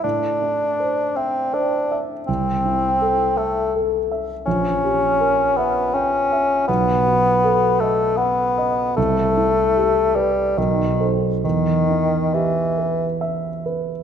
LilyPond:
<<
  \new Staff \with { instrumentName = "Grand piano" } { \time 3/4 \key a \dorian \tempo 4 = 80 a,8 e'8 c''8 e''8 c''8 e''8 | c,8 e'8 a'8 e''8 a'8 e''8 | ais,,8 g'8 ais'8 e''8 g''8 e''8 | b,,8 fis'8 a'8 dis''8 fis''8 dis''8 |
c,8 e'8 g'8 b'8 b,,8 <a' c''>8 | e,8 e'8 g'8 b'8 e''8 b'8 | }
  \new Staff \with { instrumentName = "Bassoon" } { \time 3/4 \key a \dorian d'4. c'8 d'8 r8 | c'4. a8 r4 | cis'4. b8 cis'4 | b4. a8 b4 |
a4. g8 dis8 r8 | dis4 e4 r4 | }
>>